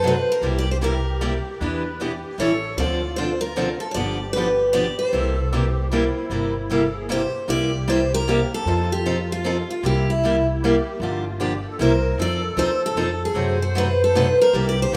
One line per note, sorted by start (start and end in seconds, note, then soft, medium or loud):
0.00 0.17 F#2 medium
0.00 0.14 C3 medium
0.00 0.15 F#3 medium
0.00 0.15 A3 medium
0.00 0.14 C4 medium
0.00 0.45 C5 loud
0.04 0.15 D#4 medium
0.04 0.15 F#4 medium
0.04 0.15 A4 medium
0.04 0.30 B4 medium
0.32 0.58 A#4 medium
0.41 1.36 C2 medium
0.41 0.63 C3 medium
0.41 0.64 G3 medium
0.41 0.64 A#3 medium
0.41 0.64 E4 medium
0.41 1.63 G4 medium
0.41 0.64 G4 medium
0.58 0.69 D5 medium
0.71 0.76 C5 medium
0.81 0.93 C3 medium
0.81 0.93 G3 medium
0.81 0.93 A#3 medium
0.81 0.93 E4 medium
0.81 0.93 G4 medium
0.81 1.43 A#4 medium
1.21 1.32 C3 medium
1.21 1.32 G3 medium
1.21 1.32 A#3 medium
1.21 1.32 E4 medium
1.21 1.33 G4 medium
1.60 2.23 E2 medium
1.60 1.82 E3 medium
1.60 1.82 G3 medium
1.60 1.82 B3 medium
1.60 1.82 D4 medium
1.60 1.82 E4 medium
1.60 1.82 G4 medium
1.60 2.00 B4 medium
1.60 1.83 B4 medium
2.00 2.11 E3 medium
2.00 2.11 G3 medium
2.00 2.11 B3 medium
2.00 2.11 D4 medium
2.00 2.11 E4 medium
2.00 2.40 G4 medium
2.00 2.12 G4 medium
2.00 2.12 B4 medium
2.38 2.70 A1 medium
2.38 2.50 E3 medium
2.38 2.50 G3 medium
2.38 2.51 C#4 medium
2.38 2.51 E4 medium
2.38 2.75 A4 medium
2.38 2.51 A4 medium
2.38 2.75 C#5 medium
2.77 3.71 D2 medium
2.77 2.99 D3 medium
2.77 2.99 F3 medium
2.77 3.00 C4 medium
2.77 3.00 D4 medium
2.77 3.99 F4 medium
2.77 3.00 A4 medium
2.77 3.16 D5 loud
3.16 3.29 D3 medium
3.16 3.29 F3 medium
3.16 3.29 C4 medium
3.16 3.29 D4 medium
3.16 3.29 A4 medium
3.16 3.42 C5 medium
3.41 3.78 A#4 medium
3.56 3.67 D3 medium
3.56 3.68 F3 medium
3.56 3.68 C4 medium
3.56 3.68 D4 medium
3.56 3.68 A4 medium
3.80 3.90 A4 medium
3.91 4.89 G1 medium
3.91 3.94 C#5 medium
3.91 4.33 D5 medium
3.96 4.17 D3 medium
3.96 4.17 F3 medium
3.96 4.17 B3 medium
3.96 4.17 D4 medium
3.96 5.17 G4 medium
3.96 4.18 G4 medium
4.33 4.47 D3 medium
4.33 4.47 F3 medium
4.33 4.70 B4 medium
4.37 4.47 B3 medium
4.37 4.47 D4 medium
4.37 4.47 G4 medium
4.73 4.85 D3 medium
4.73 4.85 F3 medium
4.73 4.85 B3 medium
4.73 4.85 D4 medium
4.73 4.86 G4 medium
4.73 4.96 D5 medium
4.99 7.05 C5 medium
5.13 6.07 C2 medium
5.13 5.34 C3 medium
5.13 5.34 G3 medium
5.13 5.35 A#3 medium
5.13 5.35 E4 medium
5.13 5.35 G4 medium
5.13 5.53 A4 medium
5.51 5.64 C3 medium
5.51 5.64 G3 medium
5.51 5.64 A#3 medium
5.51 5.64 E4 medium
5.51 5.88 G4 medium
5.51 5.64 G4 medium
5.89 6.03 C3 medium
5.89 6.03 G3 medium
5.89 6.03 A#3 medium
5.89 6.71 E4 medium
5.89 6.04 E4 medium
5.89 6.03 G4 medium
6.30 7.24 G1 medium
6.30 6.52 C3 medium
6.30 6.52 G3 medium
6.30 6.53 A#3 medium
6.30 6.53 E4 medium
6.30 6.53 G4 medium
6.70 6.81 C3 medium
6.70 6.82 G3 medium
6.70 6.82 A#3 medium
6.70 6.82 E4 medium
6.70 6.82 G4 medium
6.70 6.96 A4 medium
6.93 7.07 G#4 medium
7.09 7.20 C3 medium
7.09 7.21 G3 medium
7.09 7.21 A#3 medium
7.09 7.21 E4 medium
7.09 7.45 G4 medium
7.09 7.21 G4 medium
7.09 7.50 C5 medium
7.48 8.42 C2 medium
7.48 7.70 C3 medium
7.48 7.70 G3 medium
7.48 7.70 A#3 medium
7.48 7.70 E4 medium
7.48 8.70 G4 medium
7.48 7.70 G4 medium
7.48 7.86 D5 loud
7.88 7.99 C3 medium
7.88 7.99 G3 medium
7.88 7.99 A#3 medium
7.88 7.99 E4 medium
7.88 8.00 G4 medium
7.88 8.14 C5 loud
8.14 8.54 A#4 loud
8.28 8.39 C3 medium
8.28 8.39 G3 medium
8.28 8.39 A#3 medium
8.28 8.39 E4 medium
8.28 8.39 G4 medium
8.54 8.93 A4 medium
8.65 9.60 F2 medium
8.65 8.88 F3 medium
8.65 8.88 C4 medium
8.65 8.88 D#4 medium
8.65 9.88 F4 medium
8.65 8.89 A4 medium
8.92 9.28 G4 medium
9.06 9.17 F3 medium
9.06 9.17 C4 medium
9.06 9.17 D#4 medium
9.06 9.17 A4 medium
9.32 9.69 F4 medium
9.44 9.56 F3 medium
9.44 9.56 C4 medium
9.44 9.57 D#4 medium
9.44 9.57 A4 medium
9.70 9.83 F4 medium
9.83 10.77 C2 medium
9.83 10.05 C3 medium
9.83 10.05 G3 medium
9.83 10.06 A#3 medium
9.83 10.64 E4 medium
9.83 10.06 E4 medium
9.83 10.06 G4 medium
9.83 10.10 G4 medium
10.10 10.46 E4 medium
10.24 10.35 C3 medium
10.24 10.35 G3 medium
10.24 10.35 A#3 medium
10.24 10.35 E4 medium
10.24 10.36 G4 medium
10.62 10.74 C3 medium
10.62 10.74 G3 medium
10.62 10.75 A#3 medium
10.62 10.75 E4 medium
10.62 10.99 G4 medium
10.62 10.75 G4 medium
11.00 11.63 G1 medium
11.00 11.23 D3 medium
11.00 11.23 F3 medium
11.00 11.24 A#3 medium
11.00 11.24 D4 medium
11.00 11.41 F4 medium
11.00 11.24 G4 medium
11.40 11.51 D3 medium
11.40 11.52 F3 medium
11.40 11.52 A#3 medium
11.40 11.52 D4 medium
11.40 11.52 G4 medium
11.40 11.66 G4 medium
11.67 11.81 A4 medium
11.79 12.10 C2 medium
11.79 11.91 C3 medium
11.79 11.91 G3 medium
11.79 11.91 A#3 medium
11.79 11.92 E4 medium
11.79 11.92 G4 medium
11.79 12.20 A#4 medium
11.79 12.21 C5 medium
12.18 12.49 F2 medium
12.18 12.40 F3 medium
12.18 12.41 C4 medium
12.18 12.41 D#4 medium
12.18 13.39 A4 medium
12.18 12.41 A4 medium
12.18 12.58 D5 medium
12.56 12.90 D#2 medium
12.56 12.69 F3 medium
12.56 12.69 C4 medium
12.56 12.69 D#4 medium
12.56 12.69 A4 medium
12.56 12.81 C5 medium
12.86 13.24 A4 medium
12.95 13.29 F2 medium
12.95 13.08 F3 medium
12.95 13.08 C4 medium
12.95 13.09 D#4 medium
12.95 13.09 A4 medium
13.25 13.60 G#4 medium
13.34 14.29 F#2 medium
13.34 13.57 C3 medium
13.34 13.57 F#3 medium
13.34 13.57 A3 medium
13.34 13.57 D#4 medium
13.34 13.58 F#4 medium
13.34 14.56 C5 loud
13.62 13.76 F#4 medium
13.75 13.86 C3 medium
13.75 13.87 F#3 medium
13.75 13.87 A3 medium
13.75 13.87 D#4 medium
13.75 13.87 F#4 medium
13.75 14.01 B4 medium
14.04 14.16 A4 medium
14.15 14.26 C3 medium
14.15 14.26 F#3 medium
14.15 14.26 A3 medium
14.15 14.26 D#4 medium
14.15 14.26 F#4 medium
14.15 14.41 B4 medium
14.41 14.66 A#4 medium
14.53 14.84 C2 medium
14.53 14.75 C3 medium
14.53 14.75 G3 medium
14.53 14.75 A#3 medium
14.53 14.76 E4 medium
14.53 14.97 G4 medium
14.53 14.76 G4 medium
14.69 14.80 D5 medium
14.82 14.93 C5 medium
14.92 14.97 C2 medium
14.92 14.97 C3 medium
14.92 14.97 G3 medium